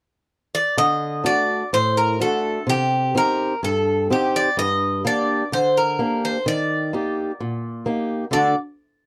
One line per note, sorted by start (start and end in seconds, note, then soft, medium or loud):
0.55 0.76 D5 medium
0.77 1.23 D3 medium
0.77 1.22 D#5 loud
1.24 1.62 A3 soft
1.24 1.62 D4 soft
1.24 1.63 F#4 soft
1.24 1.69 D5 medium
1.73 2.19 A2 medium
1.73 1.95 C5 medium
1.97 2.19 A#4 medium
2.20 2.58 A3 soft
2.20 2.58 D4 soft
2.20 2.58 F#4 soft
2.20 2.69 A4 medium
2.67 3.13 C3 medium
2.67 3.17 G4 medium
3.15 3.53 C4 soft
3.15 3.53 D#4 soft
3.15 3.53 G4 medium
3.15 3.60 A#4 medium
3.63 4.08 G2 medium
3.63 4.07 A4 medium
4.10 4.48 C4 soft
4.10 4.48 D#4 soft
4.10 4.48 G4 soft
4.10 4.35 G4 medium
4.36 4.57 D5 medium
4.57 5.03 G2 medium
4.57 5.02 D#5 medium
5.05 5.42 A#3 soft
5.05 5.43 D4 soft
5.05 5.43 G4 medium
5.05 5.53 D5 medium
5.52 5.97 D3 medium
5.52 5.77 C5 medium
5.77 6.25 A#4 medium
5.99 6.36 A#3 soft
5.99 6.37 D4 soft
5.99 6.37 G4 soft
6.25 6.45 C5 medium
6.46 6.91 D#3 medium
6.46 7.83 D5 medium
6.93 7.30 A#3 soft
6.93 7.31 D#4 soft
6.93 7.31 G4 soft
7.40 7.85 A#2 medium
7.86 8.23 A#3 soft
7.86 8.24 D#4 soft
7.86 8.24 G4 soft
8.31 8.54 D3 soft
8.31 8.54 A3 soft
8.31 8.54 D4 soft
8.31 8.55 F#4 soft
8.31 8.55 A4 medium
8.31 8.55 D5 medium